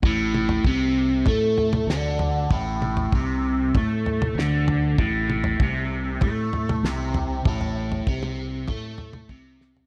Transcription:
<<
  \new Staff \with { instrumentName = "Overdriven electric guitar" } { \clef bass \time 4/4 \key a \minor \tempo 4 = 97 a,4 c4 a4 d4 | a,4 c4 a4 d4 | a,4 c4 a4 c4 | a,4 c4 a4 c4 | }
  \new Staff \with { instrumentName = "Fingered electric bass" } { \clef bass \time 4/4 \key a \minor a,,4 c,4 a,4 d,4 | a,,4 c,4 a,4 d,4 | a,,4 c,4 a,4 c,4 | a,,4 c,4 a,4 c,4 | }
  \new DrumStaff \with { instrumentName = "Drums" } \drummode { \time 4/4 <bd tomfh>8 toml16 tomfh16 bd4 <bd tomfh>8 tomfh16 <tomfh toml>16 sn8 tomfh8 | <bd tomfh>8 toml16 tomfh16 bd4 <bd tomfh>8 tomfh16 <tomfh toml>16 sn8 tomfh8 | <bd tomfh>8 toml16 tomfh16 bd4 <bd tomfh>8 tomfh16 <tomfh toml>16 sn8 tomfh8 | <bd tomfh>16 tomfh8 tomfh16 bd16 toml8. <bd tomfh>8 tomfh16 <tomfh toml>16 bd8 sn16 tomfh16 | }
>>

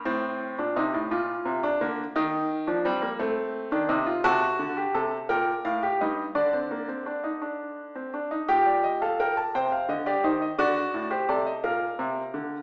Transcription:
<<
  \new Staff \with { instrumentName = "Grand piano" } { \time 6/8 \key g \minor \tempo 4. = 57 << { r2. | r2. | a''4. g''8 f''8 ees''8 | d''2~ d''8 r8 |
g''16 d''16 ees''16 f''16 g''16 a''16 g''16 f''16 ees''16 d''16 c''16 ees''16 | d''8. c''16 d''16 ees''16 f''4. | } \\ { c'8. d'16 ees'8 f'8. d'16 bes8 | ees'8. d'16 c'16 bes16 c'8. d'16 ees'16 f'16 | fis'8. g'16 a'8 bes'8. g'16 ees'8 | d'16 c'16 bes16 c'16 d'16 ees'16 d'8. c'16 d'16 ees'16 |
g'8. a'16 bes'8 c''8. g'16 ees'8 | fis'8. g'16 a'8 bes'4. | } >> }
  \new Staff \with { instrumentName = "Grand piano" } { \clef bass \time 6/8 \key g \minor a,8. bes,16 c16 a,16 bes,8 c8 d8 | ees8. f16 g8 a8. ees16 c8 | c8 d8 c8 bes,8 a,8 g,8 | d2~ d8 r8 |
bes,4. c8 d8 ees8 | d8 a,8 c8 bes,8 c8 d8 | }
>>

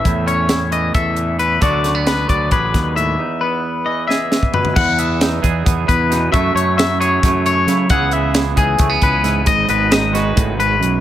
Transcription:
<<
  \new Staff \with { instrumentName = "Clean electric guitar" } { \time 7/8 \key e \major \tempo 4 = 134 e''8 cis''4 dis''8 e''4 b'8 | d''4 b'8 d''8 b'4 e''8~ | e''8 b'4 dis''8 e''4 b'8 | fis''8 e''4 r4 b'4 |
e''8 cis''8 e''8 cis''4 cis''4 | fis''8 e''4 gis'4 b'4 | dis''8 b'8 dis''8 b'4 b'4 | }
  \new Staff \with { instrumentName = "Clean electric guitar" } { \time 7/8 \key e \major << { e'8 cis'8 e'4 a'4. | <fis b d' fis'>8 a16 b16 d'4 gis'4. | dis'8 b4. gis'4. | r8 b8 dis'8 gis'8 b4 dis'8 |
<fis a e' a'>8 a8 e'8 gis'8 a4 e'8 | <e b e' gis'>8 b8 e'8 gis'8 a16 b8. e'8 | r8 b8 dis'8 fis'2 | } \\ { a,4. e4. e8 | d4. fis4. a,8 | e,4. e4. b,8 | e,4. e4. b,8 |
fis,4. fis4. cis8 | cis4. e4. gis,8 | gis,4. gis8 a,8 gis,8 fis,8 | } >> }
  \new Staff \with { instrumentName = "Fingered electric bass" } { \clef bass \time 7/8 \key e \major e,2 e,4. | d,4. d,8 a,,8 dis,4 | r2. r8 | e,4. e,8 e,8 e,4 |
fis,8 fis,4. fis,4 fis8 | cis,4. cis,8 cis,8 cis,4 | gis,,8 gis,,4. gis,,4 b,,8 | }
  \new DrumStaff \with { instrumentName = "Drums" } \drummode { \time 7/8 <hh bd>8 hh8 <hh sn>8 hh8 <hh bd>8 hh8 hh8 | <hh bd>8 <hh sn>8 <hh sn>8 <hh bd>8 <hh bd>8 <hh bd sn>8 hh8 | r4 r4 sn8 sn16 bd16 tomfh16 tomfh16 | <cymc bd>8 hh8 <hh sn>8 <hh bd>8 <hh bd>8 <hh bd>8 <hh sn>8 |
<hh bd>8 hh8 <hh sn>8 hh8 <hh bd sn>8 hh8 <hh sn>8 | <hh bd>8 hh8 <hh sn>8 <hh bd>8 <hh bd>8 <hh bd>8 <hh sn>8 | <hh bd>8 hh8 <hh sn>8 <hh sn>8 <hh bd>8 hh8 hh8 | }
>>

